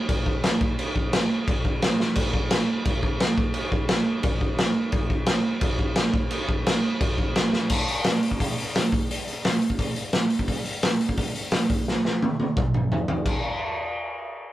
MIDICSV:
0, 0, Header, 1, 2, 480
1, 0, Start_track
1, 0, Tempo, 346420
1, 1081, Time_signature, 4, 2, 24, 8
1, 20131, End_track
2, 0, Start_track
2, 0, Title_t, "Drums"
2, 122, Note_on_c, 9, 49, 73
2, 124, Note_on_c, 9, 36, 117
2, 260, Note_off_c, 9, 49, 0
2, 262, Note_off_c, 9, 36, 0
2, 364, Note_on_c, 9, 36, 87
2, 502, Note_off_c, 9, 36, 0
2, 603, Note_on_c, 9, 49, 67
2, 609, Note_on_c, 9, 38, 117
2, 742, Note_off_c, 9, 49, 0
2, 747, Note_off_c, 9, 38, 0
2, 845, Note_on_c, 9, 36, 117
2, 984, Note_off_c, 9, 36, 0
2, 1090, Note_on_c, 9, 49, 62
2, 1229, Note_off_c, 9, 49, 0
2, 1325, Note_on_c, 9, 36, 89
2, 1464, Note_off_c, 9, 36, 0
2, 1564, Note_on_c, 9, 49, 71
2, 1569, Note_on_c, 9, 38, 127
2, 1702, Note_off_c, 9, 49, 0
2, 1708, Note_off_c, 9, 38, 0
2, 2046, Note_on_c, 9, 36, 127
2, 2050, Note_on_c, 9, 49, 62
2, 2185, Note_off_c, 9, 36, 0
2, 2188, Note_off_c, 9, 49, 0
2, 2285, Note_on_c, 9, 36, 93
2, 2423, Note_off_c, 9, 36, 0
2, 2525, Note_on_c, 9, 49, 66
2, 2531, Note_on_c, 9, 38, 122
2, 2664, Note_off_c, 9, 49, 0
2, 2669, Note_off_c, 9, 38, 0
2, 2775, Note_on_c, 9, 38, 68
2, 2914, Note_off_c, 9, 38, 0
2, 2987, Note_on_c, 9, 49, 94
2, 2999, Note_on_c, 9, 36, 111
2, 3125, Note_off_c, 9, 49, 0
2, 3137, Note_off_c, 9, 36, 0
2, 3236, Note_on_c, 9, 36, 95
2, 3375, Note_off_c, 9, 36, 0
2, 3471, Note_on_c, 9, 49, 77
2, 3476, Note_on_c, 9, 38, 127
2, 3609, Note_off_c, 9, 49, 0
2, 3615, Note_off_c, 9, 38, 0
2, 3955, Note_on_c, 9, 49, 81
2, 3959, Note_on_c, 9, 36, 121
2, 4093, Note_off_c, 9, 49, 0
2, 4098, Note_off_c, 9, 36, 0
2, 4198, Note_on_c, 9, 36, 88
2, 4336, Note_off_c, 9, 36, 0
2, 4437, Note_on_c, 9, 49, 68
2, 4443, Note_on_c, 9, 38, 111
2, 4576, Note_off_c, 9, 49, 0
2, 4581, Note_off_c, 9, 38, 0
2, 4678, Note_on_c, 9, 36, 108
2, 4816, Note_off_c, 9, 36, 0
2, 4902, Note_on_c, 9, 49, 66
2, 5041, Note_off_c, 9, 49, 0
2, 5153, Note_on_c, 9, 36, 94
2, 5291, Note_off_c, 9, 36, 0
2, 5385, Note_on_c, 9, 49, 70
2, 5390, Note_on_c, 9, 38, 122
2, 5523, Note_off_c, 9, 49, 0
2, 5529, Note_off_c, 9, 38, 0
2, 5863, Note_on_c, 9, 49, 65
2, 5872, Note_on_c, 9, 36, 127
2, 6001, Note_off_c, 9, 49, 0
2, 6011, Note_off_c, 9, 36, 0
2, 6112, Note_on_c, 9, 36, 85
2, 6251, Note_off_c, 9, 36, 0
2, 6352, Note_on_c, 9, 49, 61
2, 6357, Note_on_c, 9, 38, 111
2, 6490, Note_off_c, 9, 49, 0
2, 6496, Note_off_c, 9, 38, 0
2, 6819, Note_on_c, 9, 49, 56
2, 6827, Note_on_c, 9, 36, 114
2, 6958, Note_off_c, 9, 49, 0
2, 6966, Note_off_c, 9, 36, 0
2, 7066, Note_on_c, 9, 36, 90
2, 7205, Note_off_c, 9, 36, 0
2, 7293, Note_on_c, 9, 49, 69
2, 7299, Note_on_c, 9, 38, 127
2, 7432, Note_off_c, 9, 49, 0
2, 7437, Note_off_c, 9, 38, 0
2, 7774, Note_on_c, 9, 49, 73
2, 7780, Note_on_c, 9, 36, 127
2, 7912, Note_off_c, 9, 49, 0
2, 7919, Note_off_c, 9, 36, 0
2, 8022, Note_on_c, 9, 36, 93
2, 8160, Note_off_c, 9, 36, 0
2, 8252, Note_on_c, 9, 49, 68
2, 8258, Note_on_c, 9, 38, 114
2, 8391, Note_off_c, 9, 49, 0
2, 8396, Note_off_c, 9, 38, 0
2, 8502, Note_on_c, 9, 36, 103
2, 8640, Note_off_c, 9, 36, 0
2, 8738, Note_on_c, 9, 49, 63
2, 8876, Note_off_c, 9, 49, 0
2, 8988, Note_on_c, 9, 36, 92
2, 9126, Note_off_c, 9, 36, 0
2, 9235, Note_on_c, 9, 49, 81
2, 9241, Note_on_c, 9, 38, 127
2, 9374, Note_off_c, 9, 49, 0
2, 9379, Note_off_c, 9, 38, 0
2, 9710, Note_on_c, 9, 36, 126
2, 9711, Note_on_c, 9, 49, 70
2, 9849, Note_off_c, 9, 36, 0
2, 9849, Note_off_c, 9, 49, 0
2, 9951, Note_on_c, 9, 36, 95
2, 10090, Note_off_c, 9, 36, 0
2, 10192, Note_on_c, 9, 49, 63
2, 10198, Note_on_c, 9, 38, 112
2, 10331, Note_off_c, 9, 49, 0
2, 10336, Note_off_c, 9, 38, 0
2, 10436, Note_on_c, 9, 38, 73
2, 10575, Note_off_c, 9, 38, 0
2, 10664, Note_on_c, 9, 57, 115
2, 10672, Note_on_c, 9, 36, 100
2, 10802, Note_off_c, 9, 57, 0
2, 10811, Note_off_c, 9, 36, 0
2, 10920, Note_on_c, 9, 46, 58
2, 11058, Note_off_c, 9, 46, 0
2, 11145, Note_on_c, 9, 46, 76
2, 11151, Note_on_c, 9, 38, 119
2, 11284, Note_off_c, 9, 46, 0
2, 11289, Note_off_c, 9, 38, 0
2, 11398, Note_on_c, 9, 46, 58
2, 11520, Note_on_c, 9, 36, 76
2, 11537, Note_off_c, 9, 46, 0
2, 11643, Note_off_c, 9, 36, 0
2, 11643, Note_on_c, 9, 36, 110
2, 11649, Note_on_c, 9, 46, 90
2, 11782, Note_off_c, 9, 36, 0
2, 11788, Note_off_c, 9, 46, 0
2, 11891, Note_on_c, 9, 46, 62
2, 12030, Note_off_c, 9, 46, 0
2, 12130, Note_on_c, 9, 46, 82
2, 12136, Note_on_c, 9, 38, 104
2, 12269, Note_off_c, 9, 46, 0
2, 12274, Note_off_c, 9, 38, 0
2, 12366, Note_on_c, 9, 36, 105
2, 12378, Note_on_c, 9, 46, 60
2, 12504, Note_off_c, 9, 36, 0
2, 12517, Note_off_c, 9, 46, 0
2, 12621, Note_on_c, 9, 46, 74
2, 12759, Note_off_c, 9, 46, 0
2, 12855, Note_on_c, 9, 46, 55
2, 12994, Note_off_c, 9, 46, 0
2, 13090, Note_on_c, 9, 46, 79
2, 13096, Note_on_c, 9, 38, 113
2, 13229, Note_off_c, 9, 46, 0
2, 13234, Note_off_c, 9, 38, 0
2, 13325, Note_on_c, 9, 46, 55
2, 13440, Note_on_c, 9, 36, 76
2, 13463, Note_off_c, 9, 46, 0
2, 13563, Note_on_c, 9, 46, 81
2, 13564, Note_off_c, 9, 36, 0
2, 13564, Note_on_c, 9, 36, 103
2, 13701, Note_off_c, 9, 46, 0
2, 13702, Note_off_c, 9, 36, 0
2, 13803, Note_on_c, 9, 46, 56
2, 13942, Note_off_c, 9, 46, 0
2, 14032, Note_on_c, 9, 46, 68
2, 14038, Note_on_c, 9, 38, 101
2, 14171, Note_off_c, 9, 46, 0
2, 14177, Note_off_c, 9, 38, 0
2, 14274, Note_on_c, 9, 46, 53
2, 14400, Note_on_c, 9, 36, 80
2, 14413, Note_off_c, 9, 46, 0
2, 14522, Note_off_c, 9, 36, 0
2, 14522, Note_on_c, 9, 36, 84
2, 14522, Note_on_c, 9, 46, 73
2, 14660, Note_off_c, 9, 36, 0
2, 14660, Note_off_c, 9, 46, 0
2, 14764, Note_on_c, 9, 46, 54
2, 14903, Note_off_c, 9, 46, 0
2, 15003, Note_on_c, 9, 46, 75
2, 15009, Note_on_c, 9, 38, 126
2, 15142, Note_off_c, 9, 46, 0
2, 15148, Note_off_c, 9, 38, 0
2, 15251, Note_on_c, 9, 46, 57
2, 15366, Note_on_c, 9, 36, 79
2, 15390, Note_off_c, 9, 46, 0
2, 15484, Note_on_c, 9, 46, 86
2, 15488, Note_off_c, 9, 36, 0
2, 15488, Note_on_c, 9, 36, 101
2, 15623, Note_off_c, 9, 46, 0
2, 15626, Note_off_c, 9, 36, 0
2, 15733, Note_on_c, 9, 46, 54
2, 15872, Note_off_c, 9, 46, 0
2, 15957, Note_on_c, 9, 46, 76
2, 15962, Note_on_c, 9, 38, 101
2, 16095, Note_off_c, 9, 46, 0
2, 16101, Note_off_c, 9, 38, 0
2, 16207, Note_on_c, 9, 46, 62
2, 16209, Note_on_c, 9, 36, 97
2, 16345, Note_off_c, 9, 46, 0
2, 16348, Note_off_c, 9, 36, 0
2, 16465, Note_on_c, 9, 38, 60
2, 16604, Note_off_c, 9, 38, 0
2, 16699, Note_on_c, 9, 38, 56
2, 16837, Note_off_c, 9, 38, 0
2, 16939, Note_on_c, 9, 48, 76
2, 17078, Note_off_c, 9, 48, 0
2, 17176, Note_on_c, 9, 48, 60
2, 17315, Note_off_c, 9, 48, 0
2, 17415, Note_on_c, 9, 36, 123
2, 17417, Note_on_c, 9, 47, 89
2, 17553, Note_off_c, 9, 36, 0
2, 17556, Note_off_c, 9, 47, 0
2, 17657, Note_on_c, 9, 45, 71
2, 17796, Note_off_c, 9, 45, 0
2, 17899, Note_on_c, 9, 43, 81
2, 18038, Note_off_c, 9, 43, 0
2, 18127, Note_on_c, 9, 43, 84
2, 18266, Note_off_c, 9, 43, 0
2, 18368, Note_on_c, 9, 36, 92
2, 18368, Note_on_c, 9, 57, 72
2, 18507, Note_off_c, 9, 36, 0
2, 18507, Note_off_c, 9, 57, 0
2, 20131, End_track
0, 0, End_of_file